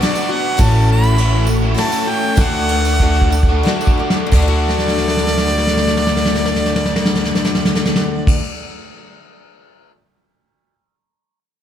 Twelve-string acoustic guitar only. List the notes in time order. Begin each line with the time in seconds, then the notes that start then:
0.01 F#3 B3 D4 F#4
0.29 B3 D4 F#4
0.57 A2 E3 A3 C#4 F#4
1.15 E3 A3 C#4 F#4
1.45 A3 C#4 F#4
1.74 E3 A3 C#4 F#4
2.06 A3 C#4 F#4
2.36 D3 A3 D4 F#4
2.99 D3 A3 D4 F#4
3.31 A3 D4 F#4
3.63 D3 A3 D4
3.68 F#4
3.97 A3 D4 F#4
4.26 D3
4.35 A3
4.42 D4
4.48 F#4